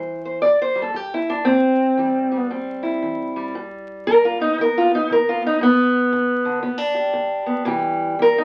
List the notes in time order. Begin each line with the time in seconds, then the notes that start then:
Already playing: E3 G3 C5
0.25 C5
0.42 C3 D5
0.62 C5
0.75 G3
0.82 A4
0.94 G3 G4
1.14 E4
1.30 D4
1.45 C3 C4
1.97 E3 G3
2.31 G3
2.51 G2 C4
2.83 E4
3.02 E3
3.36 G3
3.55 G2
4.07 D3 A#4
4.25 F4
4.40 B3 D#4
4.58 D3 A#4
4.77 F4
4.91 B3
4.95 D#4
5.10 D3 A#4
5.29 F4
5.42 B3
5.46 D#4
5.61 G2 B3
6.13 D3
6.45 D3
6.63 D3 B3
6.78 D4
6.94 G4
7.13 D3
7.46 B3
7.65 C3 E3 G3 G4
8.19 E3 A#4
8.38 D#4